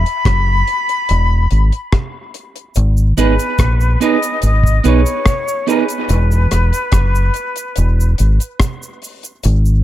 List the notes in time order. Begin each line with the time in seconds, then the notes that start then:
Already playing: B5
0.06 closed hi-hat
0.25 F#1, kick, cross-stick, closed hi-hat
0.67 closed hi-hat
0.89 closed hi-hat
1.09 E1, closed hi-hat
1.51 G#1, closed hi-hat
1.72 closed hi-hat
1.93 kick, cross-stick, closed hi-hat
2.34 closed hi-hat
2.56 closed hi-hat
2.75 G#1, closed hi-hat, cabasa
2.97 cabasa
3.17 G#1 B3 D#4 G#4 B4, closed hi-hat, cabasa
3.39 closed hi-hat, cabasa
3.59 A#1, kick, cross-stick, closed hi-hat, cabasa
3.81 cabasa
4.00 B3 D#4 G#4 B4 D#5, closed hi-hat, cabasa
4.22 closed hi-hat, cabasa
4.42 G#1 D#5, closed hi-hat, cabasa
4.63 kick, cabasa
4.84 B1 B3 D#4 G#4 B4 C#5, closed hi-hat, cabasa
5.06 closed hi-hat, cabasa
5.26 kick, cross-stick, closed hi-hat, cabasa
5.48 cabasa
5.67 B3 D#4 G#4 B4, closed hi-hat, cabasa
5.88 closed hi-hat, cabasa
6.09 E1, closed hi-hat, cabasa
6.32 cabasa
6.51 E1, cross-stick, closed hi-hat, cabasa
6.73 closed hi-hat, cabasa
6.92 F#1, kick, cross-stick, closed hi-hat, cabasa
7.15 cabasa
7.34 closed hi-hat, cabasa
7.56 closed hi-hat, cabasa
7.76 E1, closed hi-hat, cabasa
8.00 cabasa
8.18 G#1, closed hi-hat, cabasa
8.40 closed hi-hat, cabasa
8.60 kick, cross-stick, closed hi-hat, cabasa
8.83 cabasa
9.02 open hi-hat, cabasa
9.23 closed hi-hat, cabasa
9.43 G#1, closed hi-hat, cabasa
9.65 cabasa
9.81 C#5